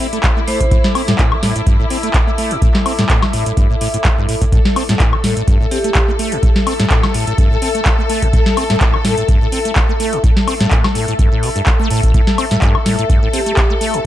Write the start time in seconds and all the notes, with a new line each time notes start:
Already playing: E4 A4 E5 D6
0.00 open hi-hat
0.13 A3, closed hi-hat
0.23 kick, clap, closed hi-hat
0.37 A3
0.47 A3 C5, open hi-hat
0.60 A2, kick, closed hi-hat
0.71 A2, kick, closed hi-hat
0.84 snare
0.95 C4, open hi-hat, high woodblock
1.08 A2, snare, closed hi-hat
1.19 A2, kick, clap, closed hi-hat
1.32 A3, high woodblock
1.43 A2, snare, open hi-hat
1.56 A2, closed hi-hat
1.67 G2, kick, closed hi-hat
1.79 A2
1.90 C4, open hi-hat
2.03 A3, closed hi-hat
2.14 kick, clap, closed hi-hat
2.27 A3
2.38 A3, open hi-hat
2.51 A2, closed hi-hat
2.62 A2, kick, closed hi-hat
2.75 snare, clap
2.86 C4, open hi-hat, high woodblock
2.99 A2, snare, closed hi-hat
3.09 A2, kick, clap, closed hi-hat
3.22 A3, snare, high woodblock
3.33 A2, open hi-hat
3.46 A2, closed hi-hat
3.57 G2, kick, closed hi-hat
3.70 A2
3.81 A2, open hi-hat
3.94 A2, closed hi-hat
4.04 G2, kick, clap, closed hi-hat
4.18 G2
4.29 A2, open hi-hat
4.41 A2, kick, closed hi-hat
4.52 A2 A4, kick, closed hi-hat
4.65 snare
4.76 C4, open hi-hat, high woodblock
4.89 A2, snare, closed hi-hat
5.00 A2, kick, clap, closed hi-hat
5.13 A3, high woodblock
5.24 A2, snare, open hi-hat
5.37 A2, closed hi-hat
5.48 G2, kick, closed hi-hat
5.61 A2
5.71 C4 G4, open hi-hat
5.83 A3 A5, closed hi-hat
5.95 kick, clap, closed hi-hat
6.08 A3
6.19 A3, open hi-hat
6.32 A2, closed hi-hat
6.43 A2, kick, closed hi-hat
6.56 snare
6.67 C4, open hi-hat, high woodblock
6.80 A2, snare, closed hi-hat
6.90 A2, kick, clap, closed hi-hat
7.03 A3, snare, high woodblock
7.14 A2, open hi-hat
7.27 A2, closed hi-hat
7.38 G2, kick, closed hi-hat
7.51 A2
7.62 C4, open hi-hat
7.75 A3, closed hi-hat
7.85 kick, clap, closed hi-hat
7.99 A3
8.10 A3, open hi-hat
8.22 A2, kick, closed hi-hat
8.33 A2, kick, closed hi-hat
8.46 snare
8.57 C4, open hi-hat, high woodblock
8.70 A2, snare, closed hi-hat
8.81 A2, kick, clap, closed hi-hat
8.94 A3, high woodblock
9.05 A2, snare, open hi-hat
9.18 A2, closed hi-hat
9.29 G2, kick, closed hi-hat
9.41 A2
9.52 C4, open hi-hat
9.65 A3, closed hi-hat
9.76 kick, clap, closed hi-hat
9.89 A3
10.00 A3, open hi-hat
10.13 A2, closed hi-hat
10.24 A2, kick, closed hi-hat
10.37 snare
10.48 C4, open hi-hat, high woodblock
10.60 A2, snare, closed hi-hat
10.71 A2, kick, clap, closed hi-hat
10.84 A3, snare, high woodblock
10.95 A2, open hi-hat
11.08 A2, closed hi-hat
11.19 G2, kick, closed hi-hat
11.32 A2
11.43 C3, open hi-hat
11.56 G2, closed hi-hat
11.66 kick, clap, closed hi-hat
11.79 A3
11.90 A2, open hi-hat
12.03 A1, kick, closed hi-hat
12.14 A2 A4, kick, closed hi-hat
12.27 snare
12.38 C4, open hi-hat, high woodblock
12.51 A2, snare, closed hi-hat
12.62 G2, kick, clap, closed hi-hat
12.75 A3, high woodblock
12.86 A2, snare, open hi-hat
12.99 A2, closed hi-hat
13.09 G2, kick, closed hi-hat
13.22 A2
13.33 C4 G4, open hi-hat
13.45 A3 C6, closed hi-hat
13.57 kick, clap, closed hi-hat
13.70 A3
13.81 A3, open hi-hat
13.94 A2, closed hi-hat